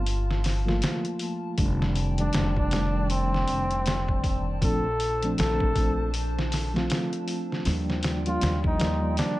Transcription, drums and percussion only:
0.06 open hi-hat
0.31 snare
0.44 snare, open hi-hat
0.68 snare
0.82 snare, open hi-hat
1.05 closed hi-hat
1.19 open hi-hat
1.58 kick, open hi-hat
1.82 snare
1.95 open hi-hat
2.18 closed hi-hat
2.33 snare, open hi-hat
2.56 kick
2.71 snare, open hi-hat
3.10 open hi-hat
3.34 snare
3.48 open hi-hat
3.71 closed hi-hat
3.86 snare, open hi-hat
4.08 kick
4.24 kick, open hi-hat
4.62 kick, open hi-hat
5.00 open hi-hat
5.23 closed hi-hat
5.38 snare, open hi-hat
5.60 kick
5.75 kick, open hi-hat
6.14 open hi-hat
6.39 snare
6.52 snare, open hi-hat
6.76 snare
6.90 snare, open hi-hat
7.13 closed hi-hat
7.28 open hi-hat
7.52 snare
7.65 snare, open hi-hat
7.90 snare
8.03 snare, open hi-hat
8.26 closed hi-hat
8.41 snare, open hi-hat
8.64 kick
8.80 snare, open hi-hat
9.17 snare, open hi-hat

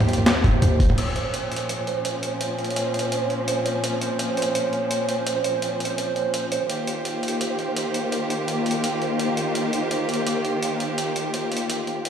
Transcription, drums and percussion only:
0.00 mid tom, open hi-hat
0.09 closed hi-hat
0.13 closed hi-hat
0.18 mid tom
0.26 snare, closed hi-hat
0.44 kick, mid tom, open hi-hat
0.62 closed hi-hat, mid tom
0.80 kick, open hi-hat
0.90 mid tom
0.98 closed hi-hat, crash
1.16 closed hi-hat
1.34 closed hi-hat
1.52 closed hi-hat
1.56 closed hi-hat
1.69 closed hi-hat
1.87 closed hi-hat
2.05 closed hi-hat
2.23 closed hi-hat
2.41 closed hi-hat
2.58 closed hi-hat
2.64 closed hi-hat
2.70 closed hi-hat
2.76 closed hi-hat
2.94 closed hi-hat
2.99 closed hi-hat
3.12 closed hi-hat
3.30 closed hi-hat
3.48 closed hi-hat
3.66 closed hi-hat
3.84 closed hi-hat
4.01 closed hi-hat
4.19 closed hi-hat
4.37 closed hi-hat
4.42 closed hi-hat
4.55 closed hi-hat
4.73 closed hi-hat
4.91 closed hi-hat
5.09 closed hi-hat
5.27 closed hi-hat
5.44 closed hi-hat
5.62 closed hi-hat
5.80 closed hi-hat
5.85 closed hi-hat
5.98 closed hi-hat
6.16 closed hi-hat
6.34 closed hi-hat
6.52 closed hi-hat
6.70 closed hi-hat
6.87 closed hi-hat
7.05 closed hi-hat
7.23 closed hi-hat
7.28 closed hi-hat
7.41 closed hi-hat
7.59 closed hi-hat
7.76 closed hi-hat
7.94 closed hi-hat
8.12 closed hi-hat
8.30 closed hi-hat
8.48 closed hi-hat
8.66 closed hi-hat
8.71 closed hi-hat
8.84 closed hi-hat
9.02 closed hi-hat
9.19 closed hi-hat
9.37 closed hi-hat
9.55 closed hi-hat
9.73 closed hi-hat
9.91 closed hi-hat
10.09 closed hi-hat
10.14 closed hi-hat
10.27 closed hi-hat
10.45 closed hi-hat
10.63 closed hi-hat
10.80 closed hi-hat
10.98 closed hi-hat
11.16 closed hi-hat
11.34 closed hi-hat
11.52 closed hi-hat
11.57 closed hi-hat
11.70 closed hi-hat
11.87 closed hi-hat
12.05 closed hi-hat

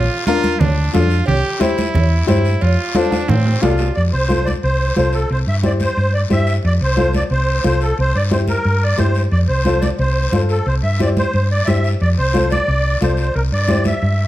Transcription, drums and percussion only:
0.27 cowbell, high conga, short guiro
0.43 high conga, short guiro
0.61 cowbell, low conga, long guiro
0.94 cowbell, high conga, low timbale, short guiro
1.10 short guiro
1.26 cowbell, low conga, long guiro
1.61 cowbell, high conga, short guiro
1.78 high conga, short guiro
1.94 cowbell, low conga, long guiro
2.28 cowbell, high conga, short guiro
2.45 short guiro
2.61 cowbell, long guiro
2.95 cowbell, high conga, short guiro
3.11 high conga, high timbale, short guiro
3.28 cowbell, low conga, high timbale, long guiro
3.45 low timbale
3.62 cowbell, high conga, low timbale, short guiro
3.78 low timbale, short guiro
3.95 long guiro
4.29 high conga, short guiro
4.47 high conga, short guiro
4.63 long guiro
4.96 high conga, short guiro
5.13 short guiro
5.30 long guiro
5.63 high conga, short guiro
5.80 high conga, short guiro
5.97 long guiro
6.30 high conga, short guiro
6.47 short guiro
6.63 long guiro
6.97 high conga, short guiro
7.13 high conga, short guiro
7.30 long guiro
7.64 high conga, short guiro
7.81 short guiro
7.98 long guiro
8.31 high conga, short guiro
8.48 high conga, short guiro
8.65 long guiro
8.98 high conga, short guiro
9.15 short guiro
9.31 long guiro
9.65 high conga, short guiro
9.82 high conga, short guiro
9.99 long guiro
10.32 high conga, short guiro
10.49 short guiro
10.66 long guiro
10.99 high conga, short guiro
11.17 high conga, short guiro
11.33 long guiro
11.67 high conga, short guiro
11.84 short guiro
12.00 long guiro
12.34 high conga, short guiro
12.50 high conga, short guiro
12.67 long guiro
13.01 high conga, short guiro
13.17 short guiro
13.34 long guiro
13.68 high conga, short guiro
13.84 high conga, short guiro
14.02 long guiro

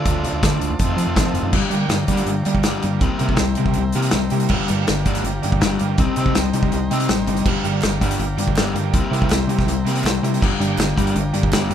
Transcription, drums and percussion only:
0.05 kick, closed hi-hat
0.24 closed hi-hat
0.43 kick, snare, closed hi-hat
0.61 closed hi-hat
0.79 kick, closed hi-hat
0.98 closed hi-hat
1.16 kick, snare, closed hi-hat
1.35 closed hi-hat
1.53 kick, crash
1.71 closed hi-hat
1.89 snare, closed hi-hat
2.08 kick, closed hi-hat
2.17 closed hi-hat
2.27 closed hi-hat
2.45 closed hi-hat
2.55 kick
2.63 snare, closed hi-hat
2.83 closed hi-hat
3.01 kick, closed hi-hat
3.19 closed hi-hat
3.29 kick
3.37 snare, closed hi-hat
3.55 closed hi-hat
3.66 kick
3.74 closed hi-hat
3.92 closed hi-hat
4.02 closed hi-hat
4.11 snare, closed hi-hat
4.30 closed hi-hat
4.40 closed hi-hat
4.49 kick, crash
4.68 closed hi-hat
4.87 snare, closed hi-hat
5.06 kick, closed hi-hat
5.15 snare, closed hi-hat
5.25 closed hi-hat
5.43 closed hi-hat
5.52 kick
5.61 snare, closed hi-hat
5.79 closed hi-hat
5.98 kick, closed hi-hat
6.16 closed hi-hat
6.26 kick
6.35 snare, closed hi-hat
6.54 closed hi-hat
6.63 kick
6.72 closed hi-hat
6.91 closed hi-hat
7.00 closed hi-hat
7.09 snare, closed hi-hat
7.27 closed hi-hat
7.37 closed hi-hat
7.46 kick, crash
7.64 closed hi-hat
7.82 snare, clap, closed hi-hat
8.01 kick, closed hi-hat
8.11 closed hi-hat
8.20 closed hi-hat
8.38 closed hi-hat
8.48 kick
8.57 snare, clap, closed hi-hat
8.76 closed hi-hat
8.94 kick, closed hi-hat
9.13 closed hi-hat
9.22 kick
9.30 snare, clap, closed hi-hat
9.49 closed hi-hat
9.59 kick, snare
9.68 closed hi-hat
9.87 closed hi-hat
9.95 closed hi-hat
10.04 snare, clap, closed hi-hat
10.24 closed hi-hat
10.34 closed hi-hat
10.42 kick, crash
10.61 closed hi-hat
10.78 snare, clap, closed hi-hat
10.98 kick, closed hi-hat
11.07 closed hi-hat
11.16 closed hi-hat
11.34 closed hi-hat
11.43 kick
11.53 snare, clap, closed hi-hat
11.71 closed hi-hat

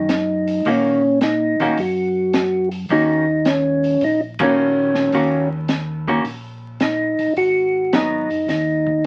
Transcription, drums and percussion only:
0.09 snare, closed hi-hat
0.47 open hi-hat
0.65 kick, open hi-hat
1.21 snare, closed hi-hat
1.60 open hi-hat
1.78 kick, open hi-hat
2.33 snare, closed hi-hat
2.71 open hi-hat
2.89 kick, open hi-hat
3.45 snare, closed hi-hat
3.84 open hi-hat
4.01 kick, open hi-hat
4.39 kick, ride
4.95 snare
5.12 kick, open hi-hat
5.68 snare, closed hi-hat
6.07 kick
6.25 kick, open hi-hat
6.80 snare, closed hi-hat
7.19 open hi-hat
7.37 kick, open hi-hat
7.93 snare, closed hi-hat
8.30 open hi-hat
8.48 kick, snare, open hi-hat
8.87 kick

